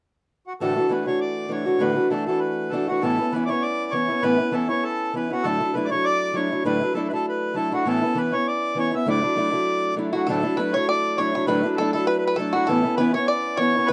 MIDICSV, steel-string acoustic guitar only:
0, 0, Header, 1, 2, 480
1, 0, Start_track
1, 0, Key_signature, 2, "major"
1, 0, Tempo, 302115
1, 956, Time_signature, 4, 2, 24, 8
1, 22127, End_track
2, 0, Start_track
2, 0, Title_t, "Steel-string acoustic guitar"
2, 0, Program_c, 0, 25
2, 959, Note_on_c, 0, 38, 52
2, 969, Note_on_c, 0, 52, 57
2, 972, Note_on_c, 0, 45, 69
2, 976, Note_on_c, 0, 57, 69
2, 986, Note_on_c, 0, 66, 67
2, 990, Note_on_c, 0, 62, 67
2, 1184, Note_off_c, 0, 66, 0
2, 1200, Note_off_c, 0, 62, 0
2, 1204, Note_on_c, 0, 66, 53
2, 1217, Note_off_c, 0, 38, 0
2, 1219, Note_on_c, 0, 62, 45
2, 1220, Note_off_c, 0, 57, 0
2, 1222, Note_off_c, 0, 52, 0
2, 1223, Note_off_c, 0, 45, 0
2, 1239, Note_on_c, 0, 57, 42
2, 1250, Note_on_c, 0, 52, 40
2, 1402, Note_off_c, 0, 52, 0
2, 1416, Note_off_c, 0, 57, 0
2, 1421, Note_on_c, 0, 52, 61
2, 1431, Note_off_c, 0, 66, 0
2, 1433, Note_off_c, 0, 62, 0
2, 1435, Note_on_c, 0, 57, 60
2, 1452, Note_on_c, 0, 62, 57
2, 1466, Note_on_c, 0, 66, 67
2, 1661, Note_off_c, 0, 66, 0
2, 1675, Note_off_c, 0, 62, 0
2, 1680, Note_on_c, 0, 66, 43
2, 1688, Note_off_c, 0, 52, 0
2, 1694, Note_on_c, 0, 62, 41
2, 1695, Note_off_c, 0, 57, 0
2, 1718, Note_on_c, 0, 57, 35
2, 1729, Note_on_c, 0, 52, 38
2, 2355, Note_off_c, 0, 52, 0
2, 2362, Note_on_c, 0, 52, 52
2, 2372, Note_off_c, 0, 57, 0
2, 2378, Note_on_c, 0, 57, 47
2, 2385, Note_off_c, 0, 62, 0
2, 2391, Note_off_c, 0, 66, 0
2, 2404, Note_on_c, 0, 62, 64
2, 2413, Note_on_c, 0, 66, 59
2, 2611, Note_off_c, 0, 66, 0
2, 2629, Note_off_c, 0, 62, 0
2, 2630, Note_on_c, 0, 66, 48
2, 2639, Note_off_c, 0, 52, 0
2, 2644, Note_off_c, 0, 57, 0
2, 2648, Note_on_c, 0, 62, 44
2, 2663, Note_on_c, 0, 57, 41
2, 2671, Note_on_c, 0, 52, 47
2, 2840, Note_off_c, 0, 52, 0
2, 2843, Note_on_c, 0, 38, 66
2, 2852, Note_off_c, 0, 62, 0
2, 2854, Note_off_c, 0, 57, 0
2, 2859, Note_on_c, 0, 45, 65
2, 2859, Note_on_c, 0, 52, 60
2, 2866, Note_off_c, 0, 66, 0
2, 2871, Note_on_c, 0, 62, 73
2, 2873, Note_on_c, 0, 57, 68
2, 2883, Note_on_c, 0, 66, 76
2, 3073, Note_off_c, 0, 66, 0
2, 3092, Note_on_c, 0, 66, 50
2, 3097, Note_off_c, 0, 62, 0
2, 3101, Note_off_c, 0, 57, 0
2, 3116, Note_on_c, 0, 62, 48
2, 3119, Note_off_c, 0, 52, 0
2, 3120, Note_on_c, 0, 57, 42
2, 3121, Note_off_c, 0, 38, 0
2, 3129, Note_off_c, 0, 45, 0
2, 3138, Note_on_c, 0, 52, 42
2, 3321, Note_off_c, 0, 52, 0
2, 3337, Note_off_c, 0, 57, 0
2, 3337, Note_off_c, 0, 66, 0
2, 3340, Note_on_c, 0, 52, 61
2, 3349, Note_off_c, 0, 62, 0
2, 3356, Note_on_c, 0, 57, 63
2, 3370, Note_on_c, 0, 62, 70
2, 3391, Note_on_c, 0, 66, 67
2, 3582, Note_off_c, 0, 66, 0
2, 3601, Note_on_c, 0, 66, 51
2, 3607, Note_off_c, 0, 62, 0
2, 3609, Note_off_c, 0, 52, 0
2, 3618, Note_off_c, 0, 57, 0
2, 3626, Note_on_c, 0, 62, 41
2, 3637, Note_on_c, 0, 57, 44
2, 3643, Note_on_c, 0, 52, 38
2, 4309, Note_off_c, 0, 52, 0
2, 4313, Note_off_c, 0, 66, 0
2, 4315, Note_on_c, 0, 52, 51
2, 4321, Note_off_c, 0, 62, 0
2, 4331, Note_off_c, 0, 57, 0
2, 4337, Note_on_c, 0, 57, 49
2, 4340, Note_on_c, 0, 62, 61
2, 4361, Note_on_c, 0, 66, 55
2, 4555, Note_off_c, 0, 66, 0
2, 4574, Note_off_c, 0, 62, 0
2, 4574, Note_on_c, 0, 66, 45
2, 4578, Note_off_c, 0, 52, 0
2, 4589, Note_off_c, 0, 57, 0
2, 4593, Note_on_c, 0, 62, 48
2, 4608, Note_on_c, 0, 57, 53
2, 4625, Note_on_c, 0, 52, 41
2, 4784, Note_off_c, 0, 52, 0
2, 4792, Note_on_c, 0, 45, 67
2, 4799, Note_off_c, 0, 66, 0
2, 4803, Note_on_c, 0, 52, 65
2, 4807, Note_off_c, 0, 57, 0
2, 4809, Note_off_c, 0, 62, 0
2, 4813, Note_on_c, 0, 59, 67
2, 4818, Note_on_c, 0, 61, 74
2, 4830, Note_on_c, 0, 64, 68
2, 5038, Note_off_c, 0, 64, 0
2, 5057, Note_off_c, 0, 45, 0
2, 5057, Note_on_c, 0, 64, 58
2, 5062, Note_off_c, 0, 52, 0
2, 5067, Note_off_c, 0, 59, 0
2, 5070, Note_off_c, 0, 61, 0
2, 5087, Note_on_c, 0, 61, 52
2, 5102, Note_on_c, 0, 59, 42
2, 5281, Note_off_c, 0, 64, 0
2, 5284, Note_off_c, 0, 59, 0
2, 5284, Note_on_c, 0, 52, 66
2, 5296, Note_off_c, 0, 61, 0
2, 5303, Note_on_c, 0, 59, 66
2, 5315, Note_on_c, 0, 61, 71
2, 5338, Note_on_c, 0, 64, 70
2, 5526, Note_off_c, 0, 64, 0
2, 5543, Note_off_c, 0, 52, 0
2, 5545, Note_on_c, 0, 64, 51
2, 5547, Note_off_c, 0, 61, 0
2, 5553, Note_off_c, 0, 59, 0
2, 5567, Note_on_c, 0, 61, 45
2, 5595, Note_on_c, 0, 59, 41
2, 6240, Note_on_c, 0, 52, 51
2, 6243, Note_off_c, 0, 59, 0
2, 6257, Note_off_c, 0, 61, 0
2, 6262, Note_on_c, 0, 59, 54
2, 6277, Note_on_c, 0, 61, 54
2, 6288, Note_off_c, 0, 64, 0
2, 6294, Note_on_c, 0, 64, 57
2, 6475, Note_off_c, 0, 64, 0
2, 6494, Note_on_c, 0, 64, 45
2, 6502, Note_off_c, 0, 52, 0
2, 6508, Note_off_c, 0, 61, 0
2, 6513, Note_off_c, 0, 59, 0
2, 6527, Note_on_c, 0, 61, 46
2, 6543, Note_on_c, 0, 59, 41
2, 6709, Note_off_c, 0, 59, 0
2, 6718, Note_on_c, 0, 45, 65
2, 6719, Note_off_c, 0, 61, 0
2, 6721, Note_off_c, 0, 64, 0
2, 6721, Note_on_c, 0, 52, 74
2, 6728, Note_on_c, 0, 59, 74
2, 6738, Note_on_c, 0, 61, 65
2, 6739, Note_on_c, 0, 64, 67
2, 6942, Note_off_c, 0, 64, 0
2, 6961, Note_on_c, 0, 64, 47
2, 6971, Note_off_c, 0, 61, 0
2, 6982, Note_off_c, 0, 45, 0
2, 6983, Note_off_c, 0, 52, 0
2, 6987, Note_off_c, 0, 59, 0
2, 6991, Note_on_c, 0, 61, 54
2, 7007, Note_on_c, 0, 59, 40
2, 7167, Note_off_c, 0, 59, 0
2, 7174, Note_on_c, 0, 52, 60
2, 7186, Note_on_c, 0, 59, 61
2, 7193, Note_off_c, 0, 61, 0
2, 7195, Note_off_c, 0, 64, 0
2, 7212, Note_on_c, 0, 61, 62
2, 7215, Note_on_c, 0, 64, 67
2, 7430, Note_off_c, 0, 64, 0
2, 7449, Note_on_c, 0, 64, 49
2, 7450, Note_off_c, 0, 52, 0
2, 7456, Note_off_c, 0, 59, 0
2, 7462, Note_off_c, 0, 61, 0
2, 7481, Note_on_c, 0, 61, 40
2, 7502, Note_on_c, 0, 59, 34
2, 8160, Note_off_c, 0, 59, 0
2, 8162, Note_on_c, 0, 52, 45
2, 8169, Note_off_c, 0, 61, 0
2, 8179, Note_on_c, 0, 59, 43
2, 8188, Note_on_c, 0, 61, 54
2, 8203, Note_off_c, 0, 64, 0
2, 8210, Note_on_c, 0, 64, 60
2, 8403, Note_off_c, 0, 64, 0
2, 8422, Note_on_c, 0, 64, 45
2, 8423, Note_off_c, 0, 61, 0
2, 8425, Note_off_c, 0, 52, 0
2, 8433, Note_off_c, 0, 59, 0
2, 8442, Note_on_c, 0, 61, 48
2, 8469, Note_on_c, 0, 59, 38
2, 8645, Note_on_c, 0, 38, 66
2, 8646, Note_on_c, 0, 45, 64
2, 8647, Note_off_c, 0, 64, 0
2, 8657, Note_off_c, 0, 61, 0
2, 8661, Note_on_c, 0, 54, 70
2, 8663, Note_off_c, 0, 59, 0
2, 8669, Note_on_c, 0, 57, 68
2, 8673, Note_on_c, 0, 62, 68
2, 8679, Note_on_c, 0, 64, 68
2, 8878, Note_off_c, 0, 64, 0
2, 8893, Note_off_c, 0, 62, 0
2, 8897, Note_on_c, 0, 64, 52
2, 8904, Note_off_c, 0, 57, 0
2, 8907, Note_off_c, 0, 38, 0
2, 8907, Note_off_c, 0, 45, 0
2, 8913, Note_on_c, 0, 62, 41
2, 8914, Note_off_c, 0, 54, 0
2, 8923, Note_on_c, 0, 57, 45
2, 8943, Note_on_c, 0, 54, 46
2, 9100, Note_off_c, 0, 54, 0
2, 9119, Note_on_c, 0, 54, 51
2, 9124, Note_off_c, 0, 64, 0
2, 9126, Note_off_c, 0, 57, 0
2, 9132, Note_off_c, 0, 62, 0
2, 9145, Note_on_c, 0, 57, 54
2, 9156, Note_on_c, 0, 62, 64
2, 9169, Note_on_c, 0, 64, 69
2, 9365, Note_off_c, 0, 64, 0
2, 9384, Note_off_c, 0, 54, 0
2, 9385, Note_on_c, 0, 64, 47
2, 9389, Note_off_c, 0, 62, 0
2, 9396, Note_off_c, 0, 57, 0
2, 9408, Note_on_c, 0, 62, 45
2, 9423, Note_on_c, 0, 57, 38
2, 9447, Note_on_c, 0, 54, 37
2, 10051, Note_off_c, 0, 54, 0
2, 10070, Note_on_c, 0, 54, 57
2, 10083, Note_off_c, 0, 57, 0
2, 10089, Note_on_c, 0, 57, 49
2, 10096, Note_off_c, 0, 62, 0
2, 10115, Note_on_c, 0, 62, 64
2, 10116, Note_off_c, 0, 64, 0
2, 10123, Note_on_c, 0, 64, 59
2, 10316, Note_off_c, 0, 64, 0
2, 10335, Note_on_c, 0, 64, 43
2, 10338, Note_off_c, 0, 62, 0
2, 10340, Note_off_c, 0, 54, 0
2, 10349, Note_off_c, 0, 57, 0
2, 10357, Note_on_c, 0, 62, 47
2, 10366, Note_on_c, 0, 57, 46
2, 10378, Note_on_c, 0, 54, 39
2, 10553, Note_on_c, 0, 38, 61
2, 10555, Note_off_c, 0, 54, 0
2, 10560, Note_off_c, 0, 57, 0
2, 10564, Note_off_c, 0, 62, 0
2, 10564, Note_off_c, 0, 64, 0
2, 10566, Note_on_c, 0, 45, 62
2, 10574, Note_on_c, 0, 54, 67
2, 10579, Note_on_c, 0, 57, 69
2, 10583, Note_on_c, 0, 62, 77
2, 10586, Note_on_c, 0, 64, 73
2, 10794, Note_off_c, 0, 64, 0
2, 10812, Note_off_c, 0, 62, 0
2, 10813, Note_on_c, 0, 64, 44
2, 10821, Note_off_c, 0, 38, 0
2, 10827, Note_off_c, 0, 45, 0
2, 10831, Note_off_c, 0, 54, 0
2, 10831, Note_on_c, 0, 62, 46
2, 10834, Note_off_c, 0, 57, 0
2, 10858, Note_on_c, 0, 54, 43
2, 10862, Note_on_c, 0, 57, 45
2, 11011, Note_off_c, 0, 54, 0
2, 11029, Note_off_c, 0, 57, 0
2, 11030, Note_on_c, 0, 54, 56
2, 11043, Note_off_c, 0, 64, 0
2, 11045, Note_off_c, 0, 62, 0
2, 11048, Note_on_c, 0, 57, 61
2, 11065, Note_on_c, 0, 62, 65
2, 11072, Note_on_c, 0, 64, 65
2, 11274, Note_off_c, 0, 64, 0
2, 11293, Note_on_c, 0, 64, 43
2, 11294, Note_off_c, 0, 62, 0
2, 11300, Note_off_c, 0, 54, 0
2, 11309, Note_off_c, 0, 57, 0
2, 11313, Note_on_c, 0, 62, 41
2, 11332, Note_on_c, 0, 57, 38
2, 11337, Note_on_c, 0, 54, 35
2, 11964, Note_off_c, 0, 54, 0
2, 11983, Note_on_c, 0, 54, 52
2, 11994, Note_off_c, 0, 62, 0
2, 11999, Note_off_c, 0, 57, 0
2, 12005, Note_on_c, 0, 57, 53
2, 12013, Note_on_c, 0, 62, 51
2, 12023, Note_off_c, 0, 64, 0
2, 12030, Note_on_c, 0, 64, 64
2, 12243, Note_off_c, 0, 64, 0
2, 12252, Note_off_c, 0, 62, 0
2, 12256, Note_off_c, 0, 54, 0
2, 12262, Note_on_c, 0, 64, 50
2, 12267, Note_off_c, 0, 57, 0
2, 12271, Note_on_c, 0, 62, 57
2, 12299, Note_on_c, 0, 57, 43
2, 12313, Note_on_c, 0, 54, 39
2, 12479, Note_on_c, 0, 45, 75
2, 12487, Note_off_c, 0, 64, 0
2, 12490, Note_off_c, 0, 54, 0
2, 12492, Note_off_c, 0, 62, 0
2, 12495, Note_off_c, 0, 57, 0
2, 12496, Note_on_c, 0, 52, 72
2, 12501, Note_on_c, 0, 59, 72
2, 12504, Note_on_c, 0, 61, 77
2, 12518, Note_on_c, 0, 64, 69
2, 12720, Note_off_c, 0, 64, 0
2, 12739, Note_on_c, 0, 64, 53
2, 12744, Note_off_c, 0, 45, 0
2, 12753, Note_off_c, 0, 52, 0
2, 12753, Note_off_c, 0, 61, 0
2, 12755, Note_off_c, 0, 59, 0
2, 12773, Note_on_c, 0, 61, 50
2, 12780, Note_on_c, 0, 59, 45
2, 12942, Note_off_c, 0, 59, 0
2, 12947, Note_on_c, 0, 52, 63
2, 12961, Note_on_c, 0, 59, 63
2, 12963, Note_off_c, 0, 61, 0
2, 12966, Note_off_c, 0, 64, 0
2, 12982, Note_on_c, 0, 61, 62
2, 12997, Note_on_c, 0, 64, 69
2, 13192, Note_off_c, 0, 64, 0
2, 13211, Note_on_c, 0, 64, 44
2, 13216, Note_off_c, 0, 61, 0
2, 13218, Note_off_c, 0, 52, 0
2, 13225, Note_off_c, 0, 59, 0
2, 13235, Note_on_c, 0, 61, 40
2, 13262, Note_on_c, 0, 59, 39
2, 13900, Note_off_c, 0, 59, 0
2, 13903, Note_on_c, 0, 52, 54
2, 13919, Note_on_c, 0, 59, 53
2, 13924, Note_off_c, 0, 61, 0
2, 13943, Note_on_c, 0, 61, 58
2, 13955, Note_off_c, 0, 64, 0
2, 13961, Note_on_c, 0, 64, 60
2, 14150, Note_off_c, 0, 64, 0
2, 14169, Note_on_c, 0, 64, 47
2, 14171, Note_off_c, 0, 61, 0
2, 14176, Note_off_c, 0, 52, 0
2, 14183, Note_off_c, 0, 59, 0
2, 14190, Note_on_c, 0, 61, 44
2, 14213, Note_on_c, 0, 59, 43
2, 14387, Note_on_c, 0, 38, 66
2, 14400, Note_off_c, 0, 64, 0
2, 14402, Note_on_c, 0, 45, 66
2, 14410, Note_off_c, 0, 59, 0
2, 14411, Note_off_c, 0, 61, 0
2, 14414, Note_on_c, 0, 54, 64
2, 14417, Note_on_c, 0, 57, 68
2, 14421, Note_on_c, 0, 62, 75
2, 14433, Note_on_c, 0, 64, 73
2, 14627, Note_off_c, 0, 64, 0
2, 14644, Note_off_c, 0, 62, 0
2, 14646, Note_on_c, 0, 64, 52
2, 14657, Note_off_c, 0, 38, 0
2, 14660, Note_off_c, 0, 57, 0
2, 14663, Note_on_c, 0, 62, 45
2, 14665, Note_off_c, 0, 45, 0
2, 14670, Note_off_c, 0, 54, 0
2, 14680, Note_on_c, 0, 57, 45
2, 14694, Note_on_c, 0, 54, 39
2, 14847, Note_off_c, 0, 54, 0
2, 14866, Note_off_c, 0, 57, 0
2, 14866, Note_on_c, 0, 54, 59
2, 14878, Note_off_c, 0, 64, 0
2, 14880, Note_off_c, 0, 62, 0
2, 14885, Note_on_c, 0, 57, 67
2, 14899, Note_on_c, 0, 62, 69
2, 14913, Note_on_c, 0, 64, 63
2, 15088, Note_off_c, 0, 64, 0
2, 15107, Note_off_c, 0, 62, 0
2, 15107, Note_on_c, 0, 64, 47
2, 15123, Note_off_c, 0, 57, 0
2, 15126, Note_on_c, 0, 62, 49
2, 15136, Note_off_c, 0, 54, 0
2, 15142, Note_on_c, 0, 57, 44
2, 15152, Note_on_c, 0, 54, 46
2, 15818, Note_off_c, 0, 54, 0
2, 15825, Note_on_c, 0, 54, 52
2, 15835, Note_off_c, 0, 57, 0
2, 15841, Note_on_c, 0, 57, 53
2, 15850, Note_off_c, 0, 62, 0
2, 15857, Note_on_c, 0, 62, 58
2, 15858, Note_off_c, 0, 64, 0
2, 15865, Note_on_c, 0, 64, 61
2, 16067, Note_off_c, 0, 64, 0
2, 16086, Note_on_c, 0, 64, 51
2, 16093, Note_off_c, 0, 62, 0
2, 16095, Note_off_c, 0, 54, 0
2, 16103, Note_off_c, 0, 57, 0
2, 16112, Note_on_c, 0, 62, 45
2, 16123, Note_on_c, 0, 57, 44
2, 16131, Note_on_c, 0, 54, 41
2, 16317, Note_off_c, 0, 64, 0
2, 16319, Note_on_c, 0, 38, 70
2, 16326, Note_off_c, 0, 54, 0
2, 16330, Note_off_c, 0, 62, 0
2, 16334, Note_on_c, 0, 45, 67
2, 16336, Note_off_c, 0, 57, 0
2, 16345, Note_on_c, 0, 54, 74
2, 16352, Note_on_c, 0, 57, 74
2, 16356, Note_on_c, 0, 64, 69
2, 16358, Note_on_c, 0, 62, 74
2, 16548, Note_off_c, 0, 64, 0
2, 16563, Note_off_c, 0, 62, 0
2, 16567, Note_on_c, 0, 64, 52
2, 16581, Note_off_c, 0, 38, 0
2, 16581, Note_off_c, 0, 57, 0
2, 16582, Note_on_c, 0, 62, 49
2, 16589, Note_off_c, 0, 45, 0
2, 16594, Note_off_c, 0, 54, 0
2, 16600, Note_on_c, 0, 57, 51
2, 16622, Note_on_c, 0, 54, 46
2, 16777, Note_off_c, 0, 54, 0
2, 16791, Note_off_c, 0, 57, 0
2, 16796, Note_on_c, 0, 54, 64
2, 16797, Note_off_c, 0, 64, 0
2, 16804, Note_off_c, 0, 62, 0
2, 16810, Note_on_c, 0, 57, 57
2, 16827, Note_on_c, 0, 62, 66
2, 16840, Note_on_c, 0, 64, 64
2, 17040, Note_off_c, 0, 64, 0
2, 17059, Note_off_c, 0, 54, 0
2, 17059, Note_on_c, 0, 64, 45
2, 17066, Note_off_c, 0, 57, 0
2, 17071, Note_off_c, 0, 62, 0
2, 17090, Note_on_c, 0, 62, 47
2, 17102, Note_on_c, 0, 57, 47
2, 17110, Note_on_c, 0, 54, 39
2, 17742, Note_off_c, 0, 54, 0
2, 17762, Note_off_c, 0, 62, 0
2, 17762, Note_on_c, 0, 54, 58
2, 17770, Note_off_c, 0, 57, 0
2, 17777, Note_on_c, 0, 57, 59
2, 17781, Note_on_c, 0, 62, 64
2, 17797, Note_off_c, 0, 64, 0
2, 17803, Note_on_c, 0, 64, 61
2, 18000, Note_off_c, 0, 64, 0
2, 18017, Note_off_c, 0, 62, 0
2, 18019, Note_on_c, 0, 64, 54
2, 18020, Note_off_c, 0, 54, 0
2, 18028, Note_off_c, 0, 57, 0
2, 18036, Note_on_c, 0, 62, 50
2, 18054, Note_on_c, 0, 57, 45
2, 18066, Note_on_c, 0, 54, 39
2, 18212, Note_on_c, 0, 38, 69
2, 18213, Note_off_c, 0, 54, 0
2, 18218, Note_off_c, 0, 57, 0
2, 18220, Note_off_c, 0, 62, 0
2, 18225, Note_on_c, 0, 45, 65
2, 18231, Note_off_c, 0, 64, 0
2, 18232, Note_on_c, 0, 54, 65
2, 18238, Note_on_c, 0, 57, 72
2, 18239, Note_on_c, 0, 62, 73
2, 18251, Note_on_c, 0, 64, 75
2, 18462, Note_off_c, 0, 64, 0
2, 18471, Note_off_c, 0, 62, 0
2, 18482, Note_on_c, 0, 64, 48
2, 18485, Note_off_c, 0, 38, 0
2, 18490, Note_on_c, 0, 62, 48
2, 18492, Note_off_c, 0, 45, 0
2, 18494, Note_off_c, 0, 57, 0
2, 18495, Note_off_c, 0, 54, 0
2, 18513, Note_on_c, 0, 57, 50
2, 18521, Note_on_c, 0, 54, 39
2, 18698, Note_off_c, 0, 54, 0
2, 18711, Note_off_c, 0, 64, 0
2, 18715, Note_off_c, 0, 62, 0
2, 18717, Note_on_c, 0, 54, 56
2, 18727, Note_off_c, 0, 57, 0
2, 18744, Note_on_c, 0, 57, 68
2, 18750, Note_on_c, 0, 62, 66
2, 18762, Note_on_c, 0, 64, 62
2, 18960, Note_off_c, 0, 64, 0
2, 18974, Note_off_c, 0, 62, 0
2, 18976, Note_off_c, 0, 54, 0
2, 18979, Note_on_c, 0, 64, 52
2, 18990, Note_off_c, 0, 57, 0
2, 18993, Note_on_c, 0, 62, 45
2, 19014, Note_on_c, 0, 57, 35
2, 19022, Note_on_c, 0, 54, 43
2, 19641, Note_off_c, 0, 54, 0
2, 19660, Note_on_c, 0, 54, 52
2, 19675, Note_off_c, 0, 62, 0
2, 19681, Note_off_c, 0, 57, 0
2, 19688, Note_on_c, 0, 57, 58
2, 19694, Note_on_c, 0, 62, 53
2, 19701, Note_off_c, 0, 64, 0
2, 19708, Note_on_c, 0, 64, 58
2, 19905, Note_off_c, 0, 64, 0
2, 19919, Note_off_c, 0, 62, 0
2, 19924, Note_on_c, 0, 64, 47
2, 19927, Note_off_c, 0, 54, 0
2, 19938, Note_on_c, 0, 62, 47
2, 19941, Note_off_c, 0, 57, 0
2, 19957, Note_on_c, 0, 57, 40
2, 19964, Note_on_c, 0, 54, 44
2, 20149, Note_on_c, 0, 45, 64
2, 20151, Note_off_c, 0, 64, 0
2, 20155, Note_off_c, 0, 54, 0
2, 20157, Note_off_c, 0, 57, 0
2, 20157, Note_off_c, 0, 62, 0
2, 20161, Note_on_c, 0, 52, 69
2, 20163, Note_on_c, 0, 59, 70
2, 20175, Note_on_c, 0, 61, 73
2, 20181, Note_on_c, 0, 64, 71
2, 20371, Note_off_c, 0, 64, 0
2, 20390, Note_on_c, 0, 64, 48
2, 20398, Note_off_c, 0, 61, 0
2, 20411, Note_off_c, 0, 45, 0
2, 20417, Note_off_c, 0, 52, 0
2, 20417, Note_on_c, 0, 61, 50
2, 20418, Note_off_c, 0, 59, 0
2, 20439, Note_on_c, 0, 59, 49
2, 20619, Note_on_c, 0, 52, 62
2, 20620, Note_off_c, 0, 59, 0
2, 20623, Note_off_c, 0, 64, 0
2, 20632, Note_off_c, 0, 61, 0
2, 20639, Note_on_c, 0, 59, 69
2, 20652, Note_on_c, 0, 61, 66
2, 20665, Note_on_c, 0, 64, 77
2, 20848, Note_off_c, 0, 64, 0
2, 20867, Note_on_c, 0, 64, 49
2, 20875, Note_off_c, 0, 61, 0
2, 20885, Note_off_c, 0, 52, 0
2, 20894, Note_on_c, 0, 61, 49
2, 20895, Note_off_c, 0, 59, 0
2, 20926, Note_on_c, 0, 59, 44
2, 21574, Note_on_c, 0, 52, 60
2, 21584, Note_off_c, 0, 59, 0
2, 21593, Note_off_c, 0, 61, 0
2, 21603, Note_on_c, 0, 59, 62
2, 21623, Note_on_c, 0, 61, 51
2, 21624, Note_off_c, 0, 64, 0
2, 21630, Note_on_c, 0, 64, 61
2, 21841, Note_off_c, 0, 52, 0
2, 21843, Note_off_c, 0, 64, 0
2, 21856, Note_off_c, 0, 59, 0
2, 21862, Note_on_c, 0, 64, 46
2, 21866, Note_off_c, 0, 61, 0
2, 21882, Note_on_c, 0, 61, 47
2, 21908, Note_on_c, 0, 59, 38
2, 22069, Note_off_c, 0, 59, 0
2, 22074, Note_on_c, 0, 45, 73
2, 22077, Note_off_c, 0, 61, 0
2, 22077, Note_off_c, 0, 64, 0
2, 22127, Note_off_c, 0, 45, 0
2, 22127, End_track
0, 0, End_of_file